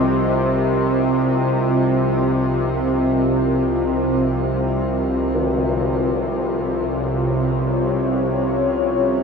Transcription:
Already playing: synth drone C2 C3, ambient pad C4 F4 A#4 D#5
5.35 ambient pad C3, tam-tam
6.20 ambient pad C#5

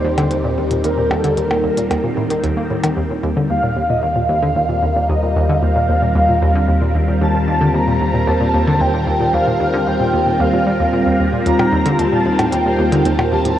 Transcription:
Already playing: synth drone D#2, string machine D#3 G3 C4 G4 A#4, synth texture D#4, soft synth lead C5
0.04 synth arpeggio sound D#2
0.18 synth arpeggio sound D3, closed hi-hat, percussion blips
0.31 synth arpeggio sound D#2, closed hi-hat
0.44 synth arpeggio sound A#2
0.58 synth arpeggio sound D#2
0.71 synth arpeggio sound A#2, closed hi-hat
0.84 synth arpeggio sound D#2, soft synth lead A#4, closed hi-hat
0.98 synth arpeggio sound A#2
1.11 synth arpeggio sound D#2, soft synth lead A4, percussion blips
1.24 synth arpeggio sound D3, closed hi-hat
1.37 synth arpeggio sound D#2, soft synth lead A#4, closed hi-hat
1.51 synth arpeggio sound A#2, percussion blips
1.64 synth arpeggio sound D#2
1.77 synth arpeggio sound A#2, closed hi-hat
1.90 synth arpeggio sound D#2, closed hi-hat, percussion blips
2.04 synth arpeggio sound A#2
2.17 synth arpeggio sound A2
2.30 synth arpeggio sound D#3, closed hi-hat
2.44 synth arpeggio sound D#2, closed hi-hat
2.57 synth arpeggio sound A#3
2.70 synth arpeggio sound A2
2.83 synth arpeggio sound D#3, closed hi-hat, percussion blips
2.97 synth drone D#2, synth arpeggio sound D#2
3.09 synth arpeggio sound A#2, string machine G3
3.23 synth arpeggio sound D#2
3.37 synth arpeggio sound D3
3.50 synth arpeggio sound D#2, soft synth lead F5
3.63 synth arpeggio sound A#2
3.77 synth arpeggio sound D#2
3.89 synth arpeggio sound A#2, soft synth lead D#5
3.98 string machine C4
4.02 synth arpeggio sound D#2, string machine A#4, soft synth lead F5
4.16 synth arpeggio sound A#2
4.23 string machine F4
4.29 synth arpeggio sound D#2
4.43 synth arpeggio sound D3
4.56 synth arpeggio sound D#2
4.69 synth arpeggio sound A#2
4.83 synth arpeggio sound D#2
4.96 synth arpeggio sound A#2
5.08 synth arpeggio sound D#2, soft synth lead D#5
5.23 synth arpeggio sound A#2
5.36 synth arpeggio sound D#2
5.49 synth arpeggio sound D3
5.62 synth arpeggio sound D#2, soft synth lead F5
5.76 synth arpeggio sound A#2
5.89 synth arpeggio sound D#2
6.02 synth arpeggio sound A#2
6.15 synth arpeggio sound D#2, soft synth lead F5
6.29 synth arpeggio sound A#2
6.42 synth arpeggio sound D#2
6.55 synth arpeggio sound D3
6.68 synth arpeggio sound D#2
6.82 synth arpeggio sound A#2
6.95 synth arpeggio sound D#2
7.08 synth arpeggio sound A#2
7.21 synth arpeggio sound D#2, soft synth lead A5
7.35 synth arpeggio sound A#2
7.48 synth arpeggio sound D#2
7.61 synth arpeggio sound D3
7.74 synth arpeggio sound D#2, soft synth lead A#5
7.87 synth arpeggio sound A#2
8.00 synth arpeggio sound D#2
8.14 synth arpeggio sound A#2
8.27 synth arpeggio sound D#2, soft synth lead A5
8.40 synth arpeggio sound A#2
8.54 synth arpeggio sound D#2
8.67 synth arpeggio sound D3
8.80 synth arpeggio sound D#2, soft synth lead G5
8.94 synth arpeggio sound A#2
9.07 synth arpeggio sound D#2
9.21 synth arpeggio sound A#2
9.33 synth arpeggio sound D#2, soft synth lead F5
9.47 synth arpeggio sound A#2
9.60 synth arpeggio sound D#2
9.73 synth arpeggio sound D3
9.87 synth arpeggio sound D#2, soft synth lead G5
10.00 synth arpeggio sound A#2
10.13 synth arpeggio sound D#2
10.27 synth arpeggio sound A#2
10.40 synth arpeggio sound D#2, soft synth lead F5
10.53 synth arpeggio sound A#2
10.66 synth arpeggio sound G3
10.80 synth arpeggio sound D#2
10.93 synth arpeggio sound A#2
11.06 synth arpeggio sound D#2
11.19 synth arpeggio sound D#2
11.33 synth arpeggio sound A#2
11.46 synth drone D#2, synth arpeggio sound D#2, vibraphone F4, soft synth lead A#5, closed hi-hat
11.59 synth arpeggio sound A#2, vibraphone D#4, percussion blips
11.73 synth arpeggio sound D#2
11.86 synth arpeggio sound D3, vibraphone F4, closed hi-hat
11.99 synth arpeggio sound D#2, vibraphone G4, soft synth lead A5, closed hi-hat
12.12 synth arpeggio sound A#2, vibraphone F4
12.26 synth arpeggio sound D#2, vibraphone D#4
12.39 synth arpeggio sound A2, closed hi-hat, percussion blips
12.52 synth arpeggio sound D#2, vibraphone F4, soft synth lead G5, closed hi-hat
12.66 synth arpeggio sound A#2, vibraphone G4
12.79 synth arpeggio sound D#2, vibraphone F4
12.92 synth arpeggio sound D3, vibraphone D#4, closed hi-hat
13.05 synth arpeggio sound D#2, closed hi-hat
13.18 synth arpeggio sound A#2, vibraphone F4, percussion blips
13.32 synth arpeggio sound D#2, vibraphone G4, soft synth lead A5
13.45 synth arpeggio sound A2, vibraphone F4, closed hi-hat

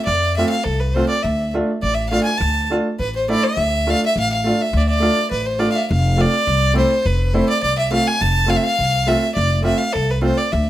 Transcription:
0.05 upright bass F2, violin D5
0.37 upright piano A3 C4 F4, violin E5
0.49 violin F5
0.64 upright bass C2, violin A4
0.80 violin B4
0.94 upright piano A3 C4 F4, violin C5
1.09 violin D5
1.23 upright bass D2, violin E5
1.54 upright piano A3 D4 F4
1.82 upright bass A1, violin D5
1.95 violin E5
2.09 upright piano A3 D4 F4, violin F5
2.24 violin G#5
2.37 upright bass D2, violin A5
2.70 upright piano A3 D4 F4
2.99 upright bass A1, violin B4
3.16 violin C5
3.28 upright piano A3 D4 E4, violin D5
3.43 violin E5
3.57 upright bass D2
3.87 upright piano A3 D4 F4, violin F5
4.06 violin E5
4.16 upright bass A1
4.20 violin F5
4.33 violin F5
4.44 upright piano A3 D4 F4
4.61 violin E5
4.73 upright bass D2, violin D5
4.80 violin E5
4.89 violin D5
5.00 upright piano A3 D4 F4
5.31 upright bass A1, violin B4
5.46 violin C5
5.59 upright piano A3 D4 F4, violin D5
5.72 violin E5 F5
5.90 upright bass F1, violin F5
6.17 upright piano A3 C4 F4
6.21 violin D5
6.47 upright bass C2
6.74 upright piano A3 C4 E4, violin C5
7.05 upright bass F1, violin B4
7.34 upright piano A3 C4 E4, violin C5
7.49 violin D5
7.63 upright bass C2, violin D5
7.79 violin E5
7.91 upright piano A3 C4 F4, violin F5
8.08 violin G#5
8.21 upright bass F1, violin A5
8.46 upright piano A3 C4 F4, violin F5
8.57 violin E5
8.63 violin F5
8.79 upright bass C2
9.06 upright piano A3 C4 F4, violin E5
9.35 upright bass F1, violin D5
9.62 upright piano A3 C4 F4, violin E5
9.78 violin F5
9.93 upright bass C2, violin A4
10.10 violin B4
10.22 upright piano A3 C4 F4, violin C5
10.37 violin D5
10.52 upright bass D2, violin E5

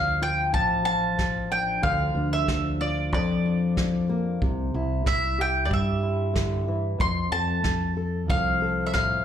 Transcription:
Already playing: fingered electric bass D2, steel-string acoustic guitar F3 F4, mandolin F5
0.22 steel-string acoustic guitar F4, mandolin G5
0.53 fingered electric bass A1, steel-string acoustic guitar F3, mandolin A5, kick
0.85 steel-string acoustic guitar F4, mandolin A5
1.17 muted steel-string acoustic guitar stroke, kick, snare
1.51 steel-string acoustic guitar D4, mandolin G5
1.82 fingered electric bass D2, steel-string acoustic guitar D3, mandolin F5, kick
2.15 fingered electric bass D2, steel-string acoustic guitar D4
2.33 mandolin E5
2.47 muted steel-string acoustic guitar stroke, kick, snare
2.81 steel-string acoustic guitar F4, mandolin D5
3.13 fingered electric bass F2, steel-string acoustic guitar F3, mandolin D5, kick
3.46 steel-string acoustic guitar D4
3.77 muted steel-string acoustic guitar stroke, kick, snare
4.09 steel-string acoustic guitar A#3
4.42 fingered electric bass C2, steel-string acoustic guitar C3, kick
4.74 fingered electric bass C2, steel-string acoustic guitar E4
5.05 mandolin E5, muted steel-string acoustic guitar stroke, kick, snare
5.38 steel-string acoustic guitar G4, mandolin G5
5.65 steel-string acoustic guitar G3, mandolin D5
5.71 fingered electric bass G2, mandolin E5, kick
6.03 steel-string acoustic guitar E4
6.33 steel-string acoustic guitar D3, kick, snare
6.68 steel-string acoustic guitar E3
6.98 steel-string acoustic guitar F2, fingered electric bass F2, mandolin C6, kick
7.32 fingered electric bass F2, steel-string acoustic guitar A4, mandolin A5
7.64 muted steel-string acoustic guitar stroke, kick, snare
7.97 steel-string acoustic guitar A4
8.29 fingered electric bass C2, steel-string acoustic guitar F3, mandolin F5, kick
8.62 steel-string acoustic guitar A4
8.86 mandolin E5
8.94 steel-string acoustic guitar A2, mandolin F5, kick, snare

